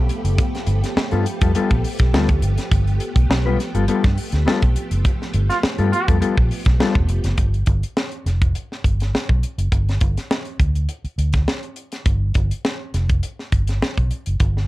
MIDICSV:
0, 0, Header, 1, 7, 480
1, 0, Start_track
1, 0, Tempo, 584226
1, 317, Time_signature, 4, 2, 24, 8
1, 12057, End_track
2, 0, Start_track
2, 0, Title_t, "Trombone"
2, 0, Program_c, 0, 57
2, 4515, Note_on_c, 0, 65, 86
2, 4586, Note_off_c, 0, 65, 0
2, 4866, Note_on_c, 0, 65, 97
2, 4974, Note_off_c, 0, 65, 0
2, 12057, End_track
3, 0, Start_track
3, 0, Title_t, "Clean electric guitar"
3, 0, Program_c, 1, 27
3, 918, Note_on_c, 1, 69, 81
3, 922, Note_on_c, 1, 65, 80
3, 926, Note_on_c, 1, 59, 77
3, 928, Note_on_c, 1, 55, 65
3, 1019, Note_off_c, 1, 69, 0
3, 1021, Note_off_c, 1, 65, 0
3, 1023, Note_off_c, 1, 59, 0
3, 1024, Note_off_c, 1, 55, 0
3, 1162, Note_on_c, 1, 65, 54
3, 1162, Note_on_c, 1, 69, 65
3, 1167, Note_on_c, 1, 59, 50
3, 1169, Note_on_c, 1, 55, 51
3, 1239, Note_off_c, 1, 65, 0
3, 1239, Note_off_c, 1, 69, 0
3, 1242, Note_off_c, 1, 59, 0
3, 1243, Note_off_c, 1, 55, 0
3, 1275, Note_on_c, 1, 55, 83
3, 1280, Note_on_c, 1, 59, 89
3, 1280, Note_on_c, 1, 65, 85
3, 1285, Note_on_c, 1, 69, 95
3, 1386, Note_off_c, 1, 55, 0
3, 1388, Note_off_c, 1, 65, 0
3, 1389, Note_off_c, 1, 59, 0
3, 1391, Note_off_c, 1, 69, 0
3, 1753, Note_on_c, 1, 55, 73
3, 1757, Note_on_c, 1, 59, 85
3, 1758, Note_on_c, 1, 65, 83
3, 1763, Note_on_c, 1, 69, 91
3, 1864, Note_off_c, 1, 55, 0
3, 1866, Note_off_c, 1, 59, 0
3, 1867, Note_off_c, 1, 65, 0
3, 1869, Note_off_c, 1, 69, 0
3, 2840, Note_on_c, 1, 71, 90
3, 2844, Note_on_c, 1, 65, 78
3, 2849, Note_on_c, 1, 59, 76
3, 2850, Note_on_c, 1, 55, 65
3, 2937, Note_off_c, 1, 71, 0
3, 2939, Note_off_c, 1, 65, 0
3, 2941, Note_off_c, 1, 59, 0
3, 2942, Note_off_c, 1, 55, 0
3, 3078, Note_on_c, 1, 69, 63
3, 3083, Note_on_c, 1, 65, 68
3, 3085, Note_on_c, 1, 59, 59
3, 3089, Note_on_c, 1, 55, 51
3, 3154, Note_off_c, 1, 69, 0
3, 3157, Note_off_c, 1, 65, 0
3, 3158, Note_off_c, 1, 59, 0
3, 3160, Note_off_c, 1, 55, 0
3, 3190, Note_on_c, 1, 55, 81
3, 3197, Note_on_c, 1, 59, 88
3, 3200, Note_on_c, 1, 65, 84
3, 3202, Note_on_c, 1, 69, 92
3, 3300, Note_off_c, 1, 55, 0
3, 3304, Note_off_c, 1, 59, 0
3, 3306, Note_off_c, 1, 65, 0
3, 3306, Note_off_c, 1, 69, 0
3, 3662, Note_on_c, 1, 55, 75
3, 3669, Note_on_c, 1, 59, 100
3, 3673, Note_on_c, 1, 65, 92
3, 3675, Note_on_c, 1, 69, 105
3, 3776, Note_off_c, 1, 55, 0
3, 3780, Note_off_c, 1, 59, 0
3, 3781, Note_off_c, 1, 65, 0
3, 3782, Note_off_c, 1, 69, 0
3, 4754, Note_on_c, 1, 69, 86
3, 4759, Note_on_c, 1, 65, 87
3, 4761, Note_on_c, 1, 59, 71
3, 4765, Note_on_c, 1, 55, 70
3, 4852, Note_off_c, 1, 69, 0
3, 4854, Note_off_c, 1, 65, 0
3, 4855, Note_off_c, 1, 59, 0
3, 4858, Note_off_c, 1, 55, 0
3, 4996, Note_on_c, 1, 69, 68
3, 4999, Note_on_c, 1, 59, 50
3, 4999, Note_on_c, 1, 65, 61
3, 5004, Note_on_c, 1, 55, 50
3, 5071, Note_off_c, 1, 69, 0
3, 5073, Note_off_c, 1, 59, 0
3, 5073, Note_off_c, 1, 65, 0
3, 5075, Note_off_c, 1, 55, 0
3, 5099, Note_on_c, 1, 55, 75
3, 5104, Note_on_c, 1, 59, 74
3, 5107, Note_on_c, 1, 65, 84
3, 5108, Note_on_c, 1, 69, 82
3, 5213, Note_off_c, 1, 55, 0
3, 5216, Note_off_c, 1, 59, 0
3, 5217, Note_off_c, 1, 65, 0
3, 5218, Note_off_c, 1, 69, 0
3, 5586, Note_on_c, 1, 55, 95
3, 5587, Note_on_c, 1, 59, 92
3, 5589, Note_on_c, 1, 65, 89
3, 5593, Note_on_c, 1, 69, 95
3, 5696, Note_off_c, 1, 55, 0
3, 5697, Note_off_c, 1, 59, 0
3, 5698, Note_off_c, 1, 65, 0
3, 5700, Note_off_c, 1, 69, 0
3, 12057, End_track
4, 0, Start_track
4, 0, Title_t, "String machine"
4, 0, Program_c, 2, 50
4, 0, Note_on_c, 2, 53, 72
4, 0, Note_on_c, 2, 57, 69
4, 0, Note_on_c, 2, 59, 70
4, 0, Note_on_c, 2, 67, 81
4, 6029, Note_off_c, 2, 53, 0
4, 6030, Note_off_c, 2, 67, 0
4, 6032, Note_off_c, 2, 57, 0
4, 6032, Note_off_c, 2, 59, 0
4, 12057, End_track
5, 0, Start_track
5, 0, Title_t, "Fingered electric bass"
5, 0, Program_c, 3, 33
5, 200, Note_on_c, 3, 30, 95
5, 303, Note_off_c, 3, 30, 0
5, 549, Note_on_c, 3, 31, 107
5, 666, Note_off_c, 3, 31, 0
5, 923, Note_on_c, 3, 43, 101
5, 1024, Note_off_c, 3, 43, 0
5, 1162, Note_on_c, 3, 41, 68
5, 1263, Note_off_c, 3, 41, 0
5, 1405, Note_on_c, 3, 34, 85
5, 1504, Note_off_c, 3, 34, 0
5, 1641, Note_on_c, 3, 35, 78
5, 1741, Note_off_c, 3, 35, 0
5, 1750, Note_on_c, 3, 38, 83
5, 1966, Note_off_c, 3, 38, 0
5, 1988, Note_on_c, 3, 31, 97
5, 2103, Note_off_c, 3, 31, 0
5, 2230, Note_on_c, 3, 31, 106
5, 2445, Note_off_c, 3, 31, 0
5, 2594, Note_on_c, 3, 35, 92
5, 2696, Note_off_c, 3, 35, 0
5, 2708, Note_on_c, 3, 35, 100
5, 2923, Note_off_c, 3, 35, 0
5, 3076, Note_on_c, 3, 31, 76
5, 3177, Note_off_c, 3, 31, 0
5, 3322, Note_on_c, 3, 43, 108
5, 3420, Note_off_c, 3, 43, 0
5, 3556, Note_on_c, 3, 38, 89
5, 3656, Note_off_c, 3, 38, 0
5, 3801, Note_on_c, 3, 35, 84
5, 3899, Note_off_c, 3, 35, 0
5, 4036, Note_on_c, 3, 30, 78
5, 4135, Note_off_c, 3, 30, 0
5, 4388, Note_on_c, 3, 31, 102
5, 4500, Note_off_c, 3, 31, 0
5, 4755, Note_on_c, 3, 43, 85
5, 4855, Note_off_c, 3, 43, 0
5, 5000, Note_on_c, 3, 41, 79
5, 5097, Note_off_c, 3, 41, 0
5, 5236, Note_on_c, 3, 34, 79
5, 5335, Note_off_c, 3, 34, 0
5, 5473, Note_on_c, 3, 35, 92
5, 5573, Note_off_c, 3, 35, 0
5, 5712, Note_on_c, 3, 28, 79
5, 5823, Note_off_c, 3, 28, 0
5, 5823, Note_on_c, 3, 29, 74
5, 5937, Note_off_c, 3, 29, 0
5, 5950, Note_on_c, 3, 30, 80
5, 6051, Note_off_c, 3, 30, 0
5, 6065, Note_on_c, 3, 31, 92
5, 6279, Note_off_c, 3, 31, 0
5, 6303, Note_on_c, 3, 31, 97
5, 6417, Note_off_c, 3, 31, 0
5, 6784, Note_on_c, 3, 29, 76
5, 6999, Note_off_c, 3, 29, 0
5, 7267, Note_on_c, 3, 31, 74
5, 7481, Note_off_c, 3, 31, 0
5, 7637, Note_on_c, 3, 35, 85
5, 7736, Note_off_c, 3, 35, 0
5, 7871, Note_on_c, 3, 30, 80
5, 7973, Note_off_c, 3, 30, 0
5, 7987, Note_on_c, 3, 31, 89
5, 8202, Note_off_c, 3, 31, 0
5, 8228, Note_on_c, 3, 31, 105
5, 8341, Note_off_c, 3, 31, 0
5, 8705, Note_on_c, 3, 38, 78
5, 8922, Note_off_c, 3, 38, 0
5, 9185, Note_on_c, 3, 38, 77
5, 9402, Note_off_c, 3, 38, 0
5, 9909, Note_on_c, 3, 31, 105
5, 10125, Note_off_c, 3, 31, 0
5, 10150, Note_on_c, 3, 31, 94
5, 10265, Note_off_c, 3, 31, 0
5, 10633, Note_on_c, 3, 29, 85
5, 10848, Note_off_c, 3, 29, 0
5, 11111, Note_on_c, 3, 31, 71
5, 11328, Note_off_c, 3, 31, 0
5, 11485, Note_on_c, 3, 35, 81
5, 11585, Note_off_c, 3, 35, 0
5, 11724, Note_on_c, 3, 30, 64
5, 11825, Note_off_c, 3, 30, 0
5, 11832, Note_on_c, 3, 31, 100
5, 12049, Note_off_c, 3, 31, 0
5, 12057, End_track
6, 0, Start_track
6, 0, Title_t, "Muted fingered electric bass strokes"
6, 793, Note_on_c, 9, 29, 53
6, 876, Note_off_c, 9, 29, 0
6, 3191, Note_on_c, 9, 29, 47
6, 3273, Note_off_c, 9, 29, 0
6, 3671, Note_on_c, 9, 29, 42
6, 3753, Note_off_c, 9, 29, 0
6, 4629, Note_on_c, 9, 29, 46
6, 4711, Note_off_c, 9, 29, 0
6, 7508, Note_on_c, 9, 29, 42
6, 7590, Note_off_c, 9, 29, 0
6, 9074, Note_on_c, 9, 29, 42
6, 9156, Note_off_c, 9, 29, 0
6, 11359, Note_on_c, 9, 29, 44
6, 11441, Note_off_c, 9, 29, 0
6, 12057, End_track
7, 0, Start_track
7, 0, Title_t, "Drums"
7, 77, Note_on_c, 9, 42, 71
7, 159, Note_off_c, 9, 42, 0
7, 204, Note_on_c, 9, 42, 61
7, 286, Note_off_c, 9, 42, 0
7, 315, Note_on_c, 9, 42, 78
7, 316, Note_on_c, 9, 36, 105
7, 397, Note_off_c, 9, 42, 0
7, 398, Note_off_c, 9, 36, 0
7, 450, Note_on_c, 9, 42, 35
7, 456, Note_on_c, 9, 38, 36
7, 532, Note_off_c, 9, 42, 0
7, 538, Note_off_c, 9, 38, 0
7, 547, Note_on_c, 9, 42, 78
7, 629, Note_off_c, 9, 42, 0
7, 687, Note_on_c, 9, 42, 51
7, 689, Note_on_c, 9, 38, 31
7, 769, Note_off_c, 9, 42, 0
7, 771, Note_off_c, 9, 38, 0
7, 797, Note_on_c, 9, 38, 100
7, 879, Note_off_c, 9, 38, 0
7, 914, Note_on_c, 9, 42, 36
7, 996, Note_off_c, 9, 42, 0
7, 1036, Note_on_c, 9, 42, 69
7, 1118, Note_off_c, 9, 42, 0
7, 1159, Note_on_c, 9, 42, 49
7, 1163, Note_on_c, 9, 36, 101
7, 1241, Note_off_c, 9, 42, 0
7, 1245, Note_off_c, 9, 36, 0
7, 1272, Note_on_c, 9, 42, 82
7, 1354, Note_off_c, 9, 42, 0
7, 1399, Note_on_c, 9, 42, 31
7, 1403, Note_on_c, 9, 36, 88
7, 1482, Note_off_c, 9, 42, 0
7, 1485, Note_off_c, 9, 36, 0
7, 1515, Note_on_c, 9, 46, 66
7, 1597, Note_off_c, 9, 46, 0
7, 1632, Note_on_c, 9, 42, 50
7, 1640, Note_on_c, 9, 36, 101
7, 1647, Note_on_c, 9, 38, 34
7, 1715, Note_off_c, 9, 42, 0
7, 1723, Note_off_c, 9, 36, 0
7, 1729, Note_off_c, 9, 38, 0
7, 1760, Note_on_c, 9, 38, 108
7, 1842, Note_off_c, 9, 38, 0
7, 1877, Note_on_c, 9, 42, 39
7, 1881, Note_on_c, 9, 36, 96
7, 1959, Note_off_c, 9, 42, 0
7, 1963, Note_off_c, 9, 36, 0
7, 1991, Note_on_c, 9, 42, 69
7, 2073, Note_off_c, 9, 42, 0
7, 2117, Note_on_c, 9, 42, 59
7, 2124, Note_on_c, 9, 38, 38
7, 2199, Note_off_c, 9, 42, 0
7, 2206, Note_off_c, 9, 38, 0
7, 2230, Note_on_c, 9, 42, 77
7, 2231, Note_on_c, 9, 36, 106
7, 2313, Note_off_c, 9, 36, 0
7, 2313, Note_off_c, 9, 42, 0
7, 2361, Note_on_c, 9, 42, 35
7, 2443, Note_off_c, 9, 42, 0
7, 2465, Note_on_c, 9, 42, 78
7, 2548, Note_off_c, 9, 42, 0
7, 2595, Note_on_c, 9, 36, 97
7, 2602, Note_on_c, 9, 42, 50
7, 2677, Note_off_c, 9, 36, 0
7, 2684, Note_off_c, 9, 42, 0
7, 2717, Note_on_c, 9, 38, 124
7, 2799, Note_off_c, 9, 38, 0
7, 2959, Note_on_c, 9, 42, 65
7, 2960, Note_on_c, 9, 38, 32
7, 3041, Note_off_c, 9, 42, 0
7, 3042, Note_off_c, 9, 38, 0
7, 3080, Note_on_c, 9, 42, 54
7, 3162, Note_off_c, 9, 42, 0
7, 3188, Note_on_c, 9, 42, 78
7, 3271, Note_off_c, 9, 42, 0
7, 3319, Note_on_c, 9, 42, 30
7, 3321, Note_on_c, 9, 36, 94
7, 3323, Note_on_c, 9, 38, 33
7, 3401, Note_off_c, 9, 42, 0
7, 3403, Note_off_c, 9, 36, 0
7, 3405, Note_off_c, 9, 38, 0
7, 3431, Note_on_c, 9, 46, 67
7, 3513, Note_off_c, 9, 46, 0
7, 3550, Note_on_c, 9, 42, 55
7, 3565, Note_on_c, 9, 38, 38
7, 3633, Note_off_c, 9, 42, 0
7, 3647, Note_off_c, 9, 38, 0
7, 3679, Note_on_c, 9, 38, 113
7, 3761, Note_off_c, 9, 38, 0
7, 3796, Note_on_c, 9, 42, 37
7, 3800, Note_on_c, 9, 36, 96
7, 3879, Note_off_c, 9, 42, 0
7, 3882, Note_off_c, 9, 36, 0
7, 3910, Note_on_c, 9, 42, 70
7, 3992, Note_off_c, 9, 42, 0
7, 4035, Note_on_c, 9, 42, 57
7, 4117, Note_off_c, 9, 42, 0
7, 4146, Note_on_c, 9, 42, 73
7, 4149, Note_on_c, 9, 36, 99
7, 4229, Note_off_c, 9, 42, 0
7, 4231, Note_off_c, 9, 36, 0
7, 4288, Note_on_c, 9, 38, 38
7, 4371, Note_off_c, 9, 38, 0
7, 4384, Note_on_c, 9, 42, 76
7, 4466, Note_off_c, 9, 42, 0
7, 4521, Note_on_c, 9, 42, 55
7, 4523, Note_on_c, 9, 38, 33
7, 4603, Note_off_c, 9, 42, 0
7, 4605, Note_off_c, 9, 38, 0
7, 4629, Note_on_c, 9, 38, 116
7, 4711, Note_off_c, 9, 38, 0
7, 4751, Note_on_c, 9, 42, 38
7, 4834, Note_off_c, 9, 42, 0
7, 4873, Note_on_c, 9, 42, 64
7, 4955, Note_off_c, 9, 42, 0
7, 4998, Note_on_c, 9, 36, 93
7, 5000, Note_on_c, 9, 42, 50
7, 5080, Note_off_c, 9, 36, 0
7, 5082, Note_off_c, 9, 42, 0
7, 5109, Note_on_c, 9, 42, 83
7, 5191, Note_off_c, 9, 42, 0
7, 5238, Note_on_c, 9, 36, 86
7, 5320, Note_off_c, 9, 36, 0
7, 5349, Note_on_c, 9, 46, 73
7, 5431, Note_off_c, 9, 46, 0
7, 5463, Note_on_c, 9, 42, 54
7, 5473, Note_on_c, 9, 36, 104
7, 5477, Note_on_c, 9, 38, 34
7, 5545, Note_off_c, 9, 42, 0
7, 5555, Note_off_c, 9, 36, 0
7, 5559, Note_off_c, 9, 38, 0
7, 5590, Note_on_c, 9, 38, 112
7, 5672, Note_off_c, 9, 38, 0
7, 5713, Note_on_c, 9, 36, 87
7, 5795, Note_off_c, 9, 36, 0
7, 5822, Note_on_c, 9, 42, 64
7, 5904, Note_off_c, 9, 42, 0
7, 5947, Note_on_c, 9, 42, 62
7, 5954, Note_on_c, 9, 38, 37
7, 6029, Note_off_c, 9, 42, 0
7, 6036, Note_off_c, 9, 38, 0
7, 6059, Note_on_c, 9, 42, 77
7, 6062, Note_on_c, 9, 36, 85
7, 6141, Note_off_c, 9, 42, 0
7, 6144, Note_off_c, 9, 36, 0
7, 6194, Note_on_c, 9, 42, 33
7, 6277, Note_off_c, 9, 42, 0
7, 6295, Note_on_c, 9, 42, 65
7, 6303, Note_on_c, 9, 36, 80
7, 6377, Note_off_c, 9, 42, 0
7, 6385, Note_off_c, 9, 36, 0
7, 6435, Note_on_c, 9, 42, 48
7, 6517, Note_off_c, 9, 42, 0
7, 6547, Note_on_c, 9, 38, 104
7, 6629, Note_off_c, 9, 38, 0
7, 6667, Note_on_c, 9, 42, 33
7, 6749, Note_off_c, 9, 42, 0
7, 6789, Note_on_c, 9, 42, 57
7, 6791, Note_on_c, 9, 38, 30
7, 6872, Note_off_c, 9, 42, 0
7, 6873, Note_off_c, 9, 38, 0
7, 6915, Note_on_c, 9, 36, 102
7, 6916, Note_on_c, 9, 42, 46
7, 6997, Note_off_c, 9, 36, 0
7, 6998, Note_off_c, 9, 42, 0
7, 7026, Note_on_c, 9, 42, 68
7, 7108, Note_off_c, 9, 42, 0
7, 7164, Note_on_c, 9, 38, 30
7, 7246, Note_off_c, 9, 38, 0
7, 7266, Note_on_c, 9, 36, 84
7, 7273, Note_on_c, 9, 42, 57
7, 7348, Note_off_c, 9, 36, 0
7, 7355, Note_off_c, 9, 42, 0
7, 7396, Note_on_c, 9, 42, 45
7, 7411, Note_on_c, 9, 38, 34
7, 7478, Note_off_c, 9, 42, 0
7, 7493, Note_off_c, 9, 38, 0
7, 7516, Note_on_c, 9, 38, 97
7, 7598, Note_off_c, 9, 38, 0
7, 7635, Note_on_c, 9, 36, 88
7, 7717, Note_off_c, 9, 36, 0
7, 7749, Note_on_c, 9, 42, 58
7, 7831, Note_off_c, 9, 42, 0
7, 7875, Note_on_c, 9, 42, 58
7, 7957, Note_off_c, 9, 42, 0
7, 7986, Note_on_c, 9, 36, 84
7, 7987, Note_on_c, 9, 42, 70
7, 8068, Note_off_c, 9, 36, 0
7, 8069, Note_off_c, 9, 42, 0
7, 8122, Note_on_c, 9, 42, 31
7, 8128, Note_on_c, 9, 38, 33
7, 8204, Note_off_c, 9, 42, 0
7, 8211, Note_off_c, 9, 38, 0
7, 8220, Note_on_c, 9, 42, 67
7, 8226, Note_on_c, 9, 36, 85
7, 8303, Note_off_c, 9, 42, 0
7, 8308, Note_off_c, 9, 36, 0
7, 8359, Note_on_c, 9, 42, 50
7, 8361, Note_on_c, 9, 38, 30
7, 8441, Note_off_c, 9, 42, 0
7, 8443, Note_off_c, 9, 38, 0
7, 8470, Note_on_c, 9, 38, 105
7, 8552, Note_off_c, 9, 38, 0
7, 8587, Note_on_c, 9, 42, 35
7, 8669, Note_off_c, 9, 42, 0
7, 8705, Note_on_c, 9, 36, 91
7, 8709, Note_on_c, 9, 42, 62
7, 8787, Note_off_c, 9, 36, 0
7, 8791, Note_off_c, 9, 42, 0
7, 8836, Note_on_c, 9, 42, 45
7, 8918, Note_off_c, 9, 42, 0
7, 8945, Note_on_c, 9, 42, 74
7, 9027, Note_off_c, 9, 42, 0
7, 9075, Note_on_c, 9, 42, 31
7, 9158, Note_off_c, 9, 42, 0
7, 9190, Note_on_c, 9, 42, 66
7, 9272, Note_off_c, 9, 42, 0
7, 9305, Note_on_c, 9, 42, 48
7, 9314, Note_on_c, 9, 36, 90
7, 9320, Note_on_c, 9, 38, 30
7, 9387, Note_off_c, 9, 42, 0
7, 9397, Note_off_c, 9, 36, 0
7, 9402, Note_off_c, 9, 38, 0
7, 9431, Note_on_c, 9, 38, 90
7, 9513, Note_off_c, 9, 38, 0
7, 9553, Note_on_c, 9, 42, 34
7, 9635, Note_off_c, 9, 42, 0
7, 9662, Note_on_c, 9, 42, 61
7, 9745, Note_off_c, 9, 42, 0
7, 9792, Note_on_c, 9, 42, 55
7, 9799, Note_on_c, 9, 38, 36
7, 9874, Note_off_c, 9, 42, 0
7, 9881, Note_off_c, 9, 38, 0
7, 9905, Note_on_c, 9, 42, 74
7, 9907, Note_on_c, 9, 36, 94
7, 9987, Note_off_c, 9, 42, 0
7, 9989, Note_off_c, 9, 36, 0
7, 10141, Note_on_c, 9, 42, 73
7, 10149, Note_on_c, 9, 36, 88
7, 10223, Note_off_c, 9, 42, 0
7, 10231, Note_off_c, 9, 36, 0
7, 10280, Note_on_c, 9, 42, 50
7, 10362, Note_off_c, 9, 42, 0
7, 10391, Note_on_c, 9, 38, 109
7, 10474, Note_off_c, 9, 38, 0
7, 10631, Note_on_c, 9, 42, 68
7, 10632, Note_on_c, 9, 38, 34
7, 10713, Note_off_c, 9, 42, 0
7, 10715, Note_off_c, 9, 38, 0
7, 10756, Note_on_c, 9, 42, 45
7, 10760, Note_on_c, 9, 36, 86
7, 10839, Note_off_c, 9, 42, 0
7, 10842, Note_off_c, 9, 36, 0
7, 10870, Note_on_c, 9, 42, 74
7, 10952, Note_off_c, 9, 42, 0
7, 11004, Note_on_c, 9, 38, 27
7, 11087, Note_off_c, 9, 38, 0
7, 11110, Note_on_c, 9, 42, 59
7, 11111, Note_on_c, 9, 36, 84
7, 11192, Note_off_c, 9, 42, 0
7, 11193, Note_off_c, 9, 36, 0
7, 11235, Note_on_c, 9, 42, 47
7, 11249, Note_on_c, 9, 38, 33
7, 11317, Note_off_c, 9, 42, 0
7, 11332, Note_off_c, 9, 38, 0
7, 11358, Note_on_c, 9, 38, 107
7, 11440, Note_off_c, 9, 38, 0
7, 11480, Note_on_c, 9, 42, 37
7, 11482, Note_on_c, 9, 36, 82
7, 11562, Note_off_c, 9, 42, 0
7, 11564, Note_off_c, 9, 36, 0
7, 11590, Note_on_c, 9, 42, 58
7, 11672, Note_off_c, 9, 42, 0
7, 11716, Note_on_c, 9, 42, 55
7, 11798, Note_off_c, 9, 42, 0
7, 11829, Note_on_c, 9, 42, 66
7, 11833, Note_on_c, 9, 36, 89
7, 11911, Note_off_c, 9, 42, 0
7, 11915, Note_off_c, 9, 36, 0
7, 11971, Note_on_c, 9, 38, 31
7, 12054, Note_off_c, 9, 38, 0
7, 12057, End_track
0, 0, End_of_file